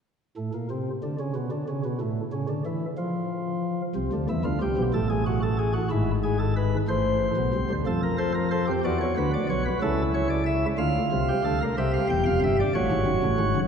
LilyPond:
<<
  \new Staff \with { instrumentName = "Pipe organ" } { \time 6/8 \key a \phrygian \tempo 4. = 61 << { r8 a,16 bes,16 c8 d16 cis16 b,16 d16 cis16 b,16 | a,8 cis16 d16 e8 f4. | r2. | r2. |
r8 a'16 bes'16 c''8 d''16 cis''16 b'16 d''16 cis''16 b'16 | a'8 cis''16 d''16 e''8 f''4. | e''16 f''16 g''16 f''16 e''16 d''16 cis''4. | } \\ { r2. | r2. | r8 e'16 f'16 g'8 a'16 gis'16 fis'16 a'16 gis'16 fis'16 | e'8 gis'16 a'16 b'8 c''4. |
a'16 bes'16 c''16 r16 a'16 g'16 fis'4. | e'4. f'8. g'16 a'16 bes'16 | g'4. fis'4. | } >> }
  \new Staff \with { instrumentName = "Pipe organ" } { \clef bass \time 6/8 \key a \phrygian r2. | r2. | <c, c>16 <d, d>16 <e, e>16 <d, d>16 <c, c>16 <b,, b,>16 <a,, a,>4. | <gis,, gis,>4. <a,, a,>8. <b,, b,>16 <c, c>16 <d, d>16 |
<f, f>4. <e, e>8 <d, d>8 <b,, b,>8 | <cis, cis>4. <d, d>8 <c, c>8 <d, d>8 | <c, c>8 <e,, e,>16 <f,, f,>16 <g,, g,>8 <a,, a,>16 <gis,, gis,>16 <fis,, fis,>16 <a,, a,>16 <gis,, gis,>16 <fis,, fis,>16 | }
>>